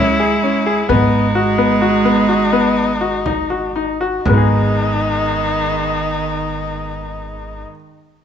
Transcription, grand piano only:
0.00 0.16 C#4 medium
0.20 0.38 G#4 medium
0.43 0.61 C#4 medium
0.66 0.84 G#4 medium
0.89 1.25 B3 medium
1.35 1.54 F#4 medium
1.58 1.77 B3 medium
1.82 2.00 F#4 medium
2.05 2.24 B3 medium
2.29 2.47 F#4 medium
2.53 2.90 B3 medium
3.01 3.20 F#4 medium
3.26 3.45 D#4 medium
3.50 3.69 F#4 medium
3.76 3.95 D#4 medium
4.01 4.20 F#4 medium
4.25 7.62 G#3 medium
4.25 7.66 B3 medium
4.33 7.70 D#4 medium
4.33 7.74 G#4 medium

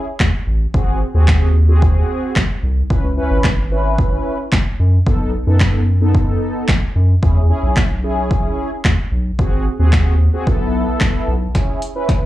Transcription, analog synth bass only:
0.20 0.30 E2 medium
0.47 0.67 A1 medium
0.74 1.04 G#1 loud
1.15 2.04 D#2 medium
2.36 2.46 G#1 medium
2.63 2.83 C2 medium
2.90 3.20 C#2 loud
3.31 4.20 G#1 medium
4.52 4.62 C#2 loud
4.80 4.99 F#2 medium
5.07 5.36 B1 loud
5.47 6.36 F#2 medium
6.69 6.78 B1 medium
6.96 7.16 F#2 medium
7.23 7.52 E2 loud
7.63 8.52 B1 medium
8.85 8.95 E2 loud
9.12 9.32 B1 medium
9.39 9.69 G#1 loud
9.80 10.29 D#2 medium
10.47 10.87 B1 loud
11.01 11.11 B1 loud
11.28 11.48 B1 medium

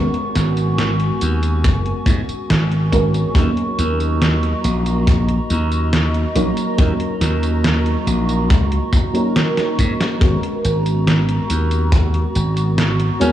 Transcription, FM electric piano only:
0.00 2.92 G#3 medium
0.00 2.92 B3 medium
0.00 2.93 C#4 medium
0.00 2.93 F#4 medium
0.00 2.93 A#4 medium
2.92 3.30 G#3 medium
2.92 3.30 B3 medium
2.92 3.30 C#4 medium
2.92 3.31 F#4 medium
2.92 3.31 A#4 medium
3.34 6.30 F#3 medium
3.34 6.30 A#3 medium
3.34 6.31 C#4 medium
3.34 6.31 D#4 medium
3.34 6.31 A#4 medium
6.35 6.73 F#3 medium
6.35 6.73 A#3 medium
6.35 6.73 C#4 medium
6.35 6.73 D#4 medium
6.35 6.74 A#4 medium
6.77 9.09 F#3 medium
6.77 9.10 A#3 medium
6.77 9.10 C#4 medium
6.77 9.10 D#4 medium
6.77 9.11 A#4 medium
9.13 10.16 F#3 medium
9.13 10.16 A#3 medium
9.13 10.16 C#4 medium
9.13 10.17 D#4 medium
9.13 10.17 A#4 medium
10.20 13.16 G#3 medium
10.20 13.16 B3 medium
10.20 13.16 C#4 medium
10.20 13.17 F#4 medium
10.20 13.17 A#4 medium
13.20 13.32 G#3 medium
13.20 13.32 B3 medium
13.20 13.32 C#4 medium
13.20 13.32 F#4 medium
13.20 13.32 A#4 medium

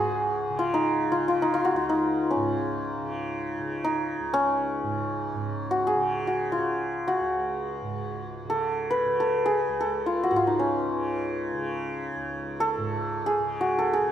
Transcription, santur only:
0.00 1.09 C#4 medium
0.00 0.59 D#4 medium
0.00 0.65 F#4 medium
0.00 3.00 G#4 medium
0.59 1.11 F4 medium
0.74 1.42 D#4 medium
1.12 1.28 F4 medium
1.28 1.53 F4 medium
1.42 1.89 D#4 medium
1.54 1.71 F4 medium
1.65 1.82 F#4 medium
1.76 5.14 F4 medium
1.89 3.84 D#4 medium
2.31 4.33 C#4 medium
3.84 7.44 D#4 medium
4.34 8.20 C#4 medium
5.71 6.27 F#4 medium
5.87 8.56 G#4 medium
6.27 6.58 F#4 medium
6.52 7.14 F4 medium
7.08 10.12 F#4 medium
8.50 9.20 A4 medium
8.90 11.64 B4 medium
9.20 9.52 A4 medium
9.46 9.86 G#4 medium
9.80 12.60 A4 medium
10.06 10.29 F4 medium
10.23 10.30 F#4 medium
10.31 10.42 F#4 medium
10.36 13.67 F4 medium
10.47 14.07 D#4 medium
10.59 14.12 C#4 medium
12.60 13.32 A4 loud
13.26 13.85 G#4 medium
13.61 14.12 F#4 medium
13.79 13.99 A4 medium
13.93 14.12 G#4 medium

